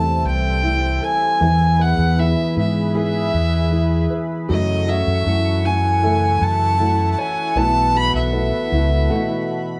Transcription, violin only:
0, 0, Header, 1, 2, 480
1, 0, Start_track
1, 0, Key_signature, 4, "major"
1, 0, Tempo, 769231
1, 880, Time_signature, 4, 2, 24, 8
1, 6114, End_track
2, 0, Start_track
2, 0, Title_t, "Violin"
2, 0, Program_c, 0, 40
2, 0, Note_on_c, 0, 81, 71
2, 163, Note_off_c, 0, 81, 0
2, 166, Note_on_c, 0, 79, 92
2, 647, Note_on_c, 0, 80, 83
2, 657, Note_off_c, 0, 79, 0
2, 1130, Note_on_c, 0, 78, 82
2, 1139, Note_off_c, 0, 80, 0
2, 1367, Note_on_c, 0, 76, 76
2, 1377, Note_off_c, 0, 78, 0
2, 1604, Note_off_c, 0, 76, 0
2, 1611, Note_on_c, 0, 76, 62
2, 1829, Note_off_c, 0, 76, 0
2, 1851, Note_on_c, 0, 76, 91
2, 2540, Note_off_c, 0, 76, 0
2, 2808, Note_on_c, 0, 75, 81
2, 3048, Note_on_c, 0, 76, 95
2, 3057, Note_off_c, 0, 75, 0
2, 3529, Note_on_c, 0, 80, 76
2, 3538, Note_off_c, 0, 76, 0
2, 4013, Note_on_c, 0, 81, 94
2, 4023, Note_off_c, 0, 80, 0
2, 4440, Note_off_c, 0, 81, 0
2, 4443, Note_on_c, 0, 81, 62
2, 4482, Note_on_c, 0, 80, 83
2, 4491, Note_off_c, 0, 81, 0
2, 4722, Note_on_c, 0, 81, 99
2, 4732, Note_off_c, 0, 80, 0
2, 4970, Note_on_c, 0, 83, 114
2, 4979, Note_off_c, 0, 81, 0
2, 5085, Note_off_c, 0, 83, 0
2, 5088, Note_on_c, 0, 76, 85
2, 6019, Note_off_c, 0, 76, 0
2, 6114, End_track
0, 0, End_of_file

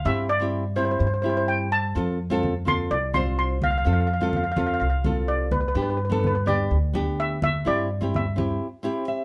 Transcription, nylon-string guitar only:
0, 0, Header, 1, 2, 480
1, 0, Start_track
1, 0, Key_signature, -1, "major"
1, 0, Tempo, 475059
1, 64, Time_signature, 4, 2, 24, 8
1, 9341, End_track
2, 0, Start_track
2, 0, Title_t, "Nylon-string guitar"
2, 0, Program_c, 0, 24
2, 50, Note_on_c, 0, 60, 72
2, 60, Note_on_c, 0, 64, 62
2, 69, Note_on_c, 0, 67, 70
2, 273, Note_off_c, 0, 60, 0
2, 278, Note_off_c, 0, 64, 0
2, 283, Note_off_c, 0, 67, 0
2, 400, Note_on_c, 0, 60, 66
2, 414, Note_on_c, 0, 64, 58
2, 422, Note_on_c, 0, 67, 76
2, 628, Note_off_c, 0, 60, 0
2, 635, Note_off_c, 0, 64, 0
2, 639, Note_off_c, 0, 67, 0
2, 766, Note_on_c, 0, 60, 71
2, 777, Note_on_c, 0, 64, 64
2, 785, Note_on_c, 0, 67, 75
2, 1063, Note_off_c, 0, 60, 0
2, 1068, Note_off_c, 0, 64, 0
2, 1072, Note_off_c, 0, 67, 0
2, 1244, Note_on_c, 0, 60, 64
2, 1252, Note_on_c, 0, 64, 60
2, 1266, Note_on_c, 0, 67, 69
2, 1686, Note_off_c, 0, 60, 0
2, 1689, Note_off_c, 0, 64, 0
2, 1696, Note_off_c, 0, 67, 0
2, 1971, Note_on_c, 0, 60, 67
2, 1984, Note_on_c, 0, 65, 57
2, 1993, Note_on_c, 0, 69, 72
2, 2193, Note_off_c, 0, 60, 0
2, 2199, Note_off_c, 0, 65, 0
2, 2204, Note_off_c, 0, 69, 0
2, 2325, Note_on_c, 0, 60, 87
2, 2334, Note_on_c, 0, 65, 75
2, 2346, Note_on_c, 0, 69, 87
2, 2550, Note_off_c, 0, 60, 0
2, 2554, Note_off_c, 0, 65, 0
2, 2560, Note_off_c, 0, 69, 0
2, 2679, Note_on_c, 0, 60, 68
2, 2690, Note_on_c, 0, 65, 58
2, 2702, Note_on_c, 0, 69, 76
2, 2979, Note_off_c, 0, 60, 0
2, 2984, Note_off_c, 0, 65, 0
2, 2990, Note_off_c, 0, 69, 0
2, 3168, Note_on_c, 0, 60, 71
2, 3176, Note_on_c, 0, 65, 63
2, 3188, Note_on_c, 0, 72, 82
2, 3607, Note_off_c, 0, 60, 0
2, 3611, Note_off_c, 0, 65, 0
2, 3617, Note_off_c, 0, 72, 0
2, 3886, Note_on_c, 0, 60, 67
2, 3895, Note_on_c, 0, 65, 61
2, 3907, Note_on_c, 0, 69, 79
2, 4110, Note_off_c, 0, 60, 0
2, 4114, Note_off_c, 0, 65, 0
2, 4120, Note_off_c, 0, 69, 0
2, 4249, Note_on_c, 0, 60, 66
2, 4257, Note_on_c, 0, 65, 62
2, 4270, Note_on_c, 0, 69, 76
2, 4471, Note_off_c, 0, 60, 0
2, 4476, Note_off_c, 0, 65, 0
2, 4482, Note_off_c, 0, 69, 0
2, 4609, Note_on_c, 0, 60, 72
2, 4615, Note_on_c, 0, 65, 57
2, 4622, Note_on_c, 0, 69, 74
2, 4904, Note_off_c, 0, 60, 0
2, 4907, Note_off_c, 0, 65, 0
2, 4910, Note_off_c, 0, 69, 0
2, 5094, Note_on_c, 0, 60, 66
2, 5104, Note_on_c, 0, 65, 61
2, 5112, Note_on_c, 0, 69, 75
2, 5531, Note_off_c, 0, 60, 0
2, 5536, Note_off_c, 0, 65, 0
2, 5539, Note_off_c, 0, 69, 0
2, 5805, Note_on_c, 0, 59, 63
2, 5813, Note_on_c, 0, 62, 57
2, 5827, Note_on_c, 0, 67, 74
2, 6030, Note_off_c, 0, 59, 0
2, 6034, Note_off_c, 0, 62, 0
2, 6041, Note_off_c, 0, 67, 0
2, 6159, Note_on_c, 0, 59, 70
2, 6172, Note_on_c, 0, 62, 60
2, 6182, Note_on_c, 0, 69, 79
2, 6387, Note_off_c, 0, 59, 0
2, 6394, Note_off_c, 0, 62, 0
2, 6399, Note_off_c, 0, 69, 0
2, 6526, Note_on_c, 0, 59, 66
2, 6538, Note_on_c, 0, 62, 69
2, 6547, Note_on_c, 0, 67, 68
2, 6823, Note_off_c, 0, 59, 0
2, 6829, Note_off_c, 0, 62, 0
2, 6834, Note_off_c, 0, 67, 0
2, 7006, Note_on_c, 0, 59, 69
2, 7018, Note_on_c, 0, 62, 65
2, 7024, Note_on_c, 0, 67, 80
2, 7448, Note_off_c, 0, 59, 0
2, 7455, Note_off_c, 0, 62, 0
2, 7456, Note_off_c, 0, 67, 0
2, 7727, Note_on_c, 0, 60, 68
2, 7738, Note_on_c, 0, 64, 60
2, 7744, Note_on_c, 0, 67, 70
2, 7952, Note_off_c, 0, 60, 0
2, 7957, Note_off_c, 0, 64, 0
2, 7960, Note_off_c, 0, 67, 0
2, 8090, Note_on_c, 0, 60, 72
2, 8098, Note_on_c, 0, 64, 55
2, 8112, Note_on_c, 0, 67, 72
2, 8314, Note_off_c, 0, 60, 0
2, 8318, Note_off_c, 0, 64, 0
2, 8325, Note_off_c, 0, 67, 0
2, 8446, Note_on_c, 0, 60, 67
2, 8461, Note_on_c, 0, 64, 56
2, 8467, Note_on_c, 0, 67, 76
2, 8744, Note_off_c, 0, 60, 0
2, 8752, Note_off_c, 0, 64, 0
2, 8755, Note_off_c, 0, 67, 0
2, 8921, Note_on_c, 0, 60, 84
2, 8931, Note_on_c, 0, 64, 74
2, 8940, Note_on_c, 0, 67, 89
2, 9170, Note_off_c, 0, 64, 0
2, 9174, Note_on_c, 0, 76, 65
2, 9341, Note_off_c, 0, 60, 0
2, 9341, Note_off_c, 0, 67, 0
2, 9341, Note_off_c, 0, 76, 0
2, 9341, End_track
0, 0, End_of_file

